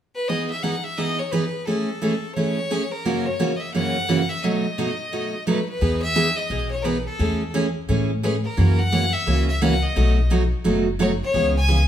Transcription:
0.15 fiddle B4
0.28 steel-string acoustic guitar E3 B3 D#4 G#4, fiddle D#5
0.50 fiddle E5
0.63 steel-string acoustic guitar E3 B3 D#4 G#4, fiddle F#5
0.84 fiddle E5
0.97 steel-string acoustic guitar E3 B3 D#4 G#4, fiddle D#5
1.19 fiddle C#5
1.31 steel-string acoustic guitar E3 B3 D#4 G#4, fiddle B4
1.65 steel-string acoustic guitar E3 A3 C#4 G#4, fiddle A4
2.02 steel-string acoustic guitar E3 A3 C#4 G#4
2.35 steel-string acoustic guitar E3 A3 C#4 G#4, fiddle C#5
2.71 steel-string acoustic guitar E3 A3 C#4 G#4
2.91 fiddle A#4
3.05 steel-string acoustic guitar F#2 C#3 E3 A#3 C#4 F#4
3.26 fiddle C#5
3.39 steel-string acoustic guitar F#2 C#3 E3 A#3 C#4 F#4
3.56 fiddle D#5 E5
3.74 steel-string acoustic guitar F#2 C#3 E3 A#3 C#4 F#4, fiddle F#5
4.09 steel-string acoustic guitar F#2 C#3 E3 A#3 C#4 F#4
4.29 fiddle E5
4.43 steel-string acoustic guitar B2 F#3 A3 D#4 F#4, fiddle D#5
4.78 steel-string acoustic guitar B2 F#3 A3 D#4 F#4
5.12 steel-string acoustic guitar B2 F#3 A3 D#4 F#4
5.47 steel-string acoustic guitar B2 F#3 A3 D#4 F#4, fiddle B4
5.69 fiddle B4
5.81 upright bass E2, steel-string acoustic guitar E3 B3 D#4 G#4
6.02 fiddle E5
6.15 steel-string acoustic guitar E3 B3 D#4 G#4
6.36 fiddle D#5
6.50 upright bass B1, steel-string acoustic guitar E3 B3 D#4 G#4
6.71 fiddle C#5
6.82 steel-string acoustic guitar E3 B3 D#4 G#4, fiddle A#4 B4
7.06 fiddle A4
7.19 upright bass E2, steel-string acoustic guitar E3 A3 C#4 G#4
7.54 steel-string acoustic guitar E3 A3 C#4 G#4
7.89 upright bass A2, steel-string acoustic guitar E3 A3 C#4 G#4
8.23 steel-string acoustic guitar E3 A3 C#4 G#4, fiddle B4
8.44 fiddle A#4
8.57 upright bass F#2, steel-string acoustic guitar C#3 E3 A#3 C#4 F#4
8.79 fiddle F#5
8.92 steel-string acoustic guitar C#3 E3 A#3 C#4 F#4
9.13 fiddle E5
9.27 upright bass C#2, steel-string acoustic guitar C#3 E3 A#3 C#4 F#4
9.48 fiddle E5
9.62 steel-string acoustic guitar C#3 E3 A#3 C#4 F#4, fiddle F#5
9.83 fiddle D#5
9.96 upright bass B1, steel-string acoustic guitar B2 F#3 A3 D#4 F#4
10.30 steel-string acoustic guitar B2 F#3 A3 D#4 F#4
10.64 upright bass F#1, steel-string acoustic guitar B2 F#3 A3 D#4 F#4
10.99 steel-string acoustic guitar B2 F#3 A3 D#4 F#4, fiddle C#5
11.23 fiddle C#5
11.34 upright bass C#2, steel-string acoustic guitar C#3 E3 B3 C#4 G#4
11.57 fiddle G#5
11.68 steel-string acoustic guitar C#3 E3 B3 C#4 G#4

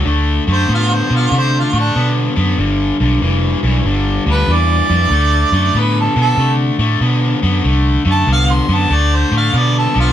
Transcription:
0.05 fingered electric bass D2, overdriven electric guitar D3 A3
0.47 fingered electric bass F#2, overdriven electric guitar D3 A3
0.53 harmonica C5
0.69 fingered electric bass A2, overdriven electric guitar D3 B3
0.74 harmonica F4
0.94 harmonica C5
1.10 fingered electric bass B2, overdriven electric guitar D3 B3
1.15 harmonica F4
1.32 fingered electric bass C3, overdriven electric guitar D3 A3
1.38 harmonica C5
1.59 harmonica F4
1.73 fingered electric bass A2, overdriven electric guitar D3 A3
1.80 harmonica D4
1.95 fingered electric bass B2, overdriven electric guitar D3 B3
2.36 fingered electric bass F#2, overdriven electric guitar D3 B3
2.58 fingered electric bass G1, overdriven electric guitar G2 D3
3.00 fingered electric bass B1, overdriven electric guitar G2 D3
3.22 fingered electric bass F1, overdriven electric guitar G2 E3
3.63 fingered electric bass B1, overdriven electric guitar G2 E3
3.85 fingered electric bass G1, overdriven electric guitar G2 D3
4.26 fingered electric bass D2, overdriven electric guitar G2 D3
4.31 harmonica B4
4.47 fingered electric bass E2, overdriven electric guitar G2 E3
4.53 harmonica D5
4.89 fingered electric bass F2, overdriven electric guitar G2 E3
5.10 fingered electric bass D2, overdriven electric guitar D3 A3
5.52 fingered electric bass F#2, overdriven electric guitar D3 A3
5.75 fingered electric bass A2, overdriven electric guitar D3 B3, harmonica B4
6.00 harmonica A4
6.16 fingered electric bass B2, overdriven electric guitar D3 B3
6.21 harmonica A4
6.38 fingered electric bass C3, overdriven electric guitar D3 A3
6.79 fingered electric bass A2, overdriven electric guitar D3 A3
7.01 fingered electric bass B2, overdriven electric guitar D3 B3
7.42 fingered electric bass F#2, overdriven electric guitar D3 B3
7.64 fingered electric bass C2, overdriven electric guitar D3 A3
8.05 fingered electric bass F#2, overdriven electric guitar D3 A3
8.11 harmonica A5
8.27 fingered electric bass C2, overdriven electric guitar D3 B3
8.32 harmonica F5
8.53 harmonica C6
8.68 fingered electric bass F#2, overdriven electric guitar D3 B3
8.74 harmonica A5
8.90 fingered electric bass D2, overdriven electric guitar D3 A3, harmonica D5
9.15 harmonica C5
9.31 fingered electric bass A2, overdriven electric guitar D3 A3
9.37 harmonica F5
9.54 fingered electric bass B2, overdriven electric guitar D3 B3, harmonica D5
9.78 harmonica A4
9.94 fingered electric bass B1, overdriven electric guitar D3 B3
10.00 harmonica F4

